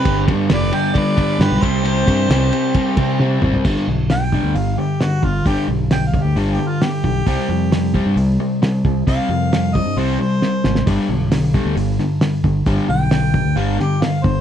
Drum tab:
CC |----------------|----------------|x---------------|----------------|
RD |x-x-x-x-x-x-x-x-|x-x-x-x-x-x-----|----------------|----------------|
HH |----------------|----------------|----o---o---o---|o---o---o---o---|
SD |----o-------o---|----o-----------|-o--o-------o---|----o-------o---|
T1 |----------------|------------o---|----------------|----------------|
T2 |----------------|--------------o-|----------------|----------------|
FT |----------------|---------------o|----------------|----------------|
BD |o-o-----o-o---o-|--o-----o-o-----|o-----o-------o-|o-----o-------o-|

CC |----------------|----------------|x---------------|----------------|
RD |----------------|----------------|----------------|----------------|
HH |o---o---o---o---|o---o---o-------|o---o---o---o---|o---o---o---o---|
SD |----o-------o---|----o-------o-oo|----o-----o-o---|----o-----o-o---|
T1 |----------------|----------------|----------------|----------------|
T2 |----------------|----------------|----------------|----------------|
FT |----------------|----------------|----------------|----------------|
BD |o-----o-------o-|o-----o---------|o-----o-------o-|o-----o-------o-|